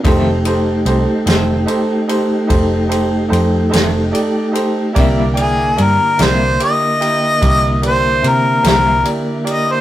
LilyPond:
<<
  \new Staff \with { instrumentName = "Harmonica" } { \time 12/8 \key f \mixolydian \tempo 4. = 49 r1. | r8 aes'8 bes'8 c''8 ees''4. c''8 bes'8 bes'8 r8 ees''16 c''16 | }
  \new Staff \with { instrumentName = "Grand piano" } { \time 12/8 \key f \mixolydian <ees' g' a' c''>8 <ees' g' a' c''>8 <ees' g' a' c''>8 <ees' g' a' c''>8 <ees' g' a' c''>8 <ees' g' a' c''>8 <ees' g' a' c''>8 <ees' g' a' c''>8 <ees' g' a' c''>8 <ees' g' a' c''>8 <ees' g' a' d''>8 <ees' g' a' c''>8 | <e' g' bes' d''>8 <e' bes' d'' g''>8 <e' g' bes' d''>8 <e' g' bes' d''>8 <e' g' bes' d'''>8 <e' g' bes' g''>8 <e' g' bes' d'''>8 <e' g' bes' d''>8 <e' g' bes' c''>8 <e' g' bes' c''>8 <e' g' bes' d''>8 <e' g' bes' d''>8 | }
  \new Staff \with { instrumentName = "Tonewheel organ" } { \time 12/8 \key f \mixolydian <a ees' g'>1. | <d bes e'>1. | }
  \new Staff \with { instrumentName = "Clean electric guitar" } { \clef bass \time 12/8 \key f \mixolydian <f, ees a c'>8 r4 <f, ees a c'>8 r2 r8 <f, ees a c'>8 r4 | <c g bes e'>8 r4 <c g bes e'>8 r2 r8 <c g bes e'>8 r4 | }
  \new Staff \with { instrumentName = "Fingered electric bass" } { \clef bass \time 12/8 \key f \mixolydian f,,4 c,16 r16 f,,8 r4 f,,4 f,8 f,,8 r4 | c,4 g,16 r16 c,8 r4 c,4 c8 c,8 r4 | }
  \new DrumStaff \with { instrumentName = "Drums" } \drummode { \time 12/8 <bd cymr>8 cymr8 cymr8 <cymr sn>8 cymr8 cymr8 <bd cymr>8 cymr8 cymr8 <cymr sn>8 cymr8 cymr8 | <bd cymr>8 cymr8 cymr8 <cymr sn>8 cymr8 cymr8 <bd cymr>8 cymr8 cymr8 <cymr sn>8 cymr8 cymr8 | }
>>